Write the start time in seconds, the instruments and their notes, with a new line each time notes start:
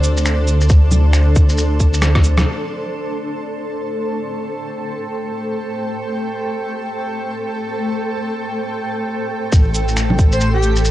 Already playing: detuned saw bass D2, ambient pad D4 A4 C5 D5
0.04 cabasa
0.17 shaker
0.26 finger snap, shaker
0.47 cabasa
0.61 shaker
0.69 kick, shaker
0.91 low bongo, cabasa
1.13 finger snap, shaker
1.36 kick, cabasa
1.49 shaker
1.58 shaker
1.80 kick, cabasa
1.94 shaker
2.02 finger snap, cross-stick, shaker
2.15 kick, cross-stick
2.24 cabasa
2.38 cross-stick, low bongo, shaker
2.47 ambient pad A3
3.94 ambient pad G5
9.52 detuned saw bass A1, kick, shaker
9.74 cabasa
9.80 ambient pad C5
9.88 shaker
9.97 finger snap, shaker
10.10 low bongo
10.19 kick, cabasa
10.32 digital synth lead C5, shaker
10.40 digital synth lead C5, shaker
10.54 digital synth lead G4
10.63 cabasa
10.76 shaker
10.85 shaker